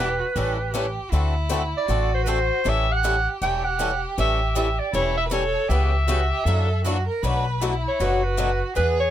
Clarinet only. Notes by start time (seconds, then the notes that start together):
Already playing: B4
1.77 D5
2.14 C5
2.24 B4
2.29 C5
2.69 E5
2.92 F#5
3.42 G5
3.64 F#5
4.20 E5
4.56 E5
4.79 D5
4.94 C#5
5.17 E5
5.32 C#5
5.69 E5
7.88 C#5
8.24 B4
8.76 B4
9.00 C#5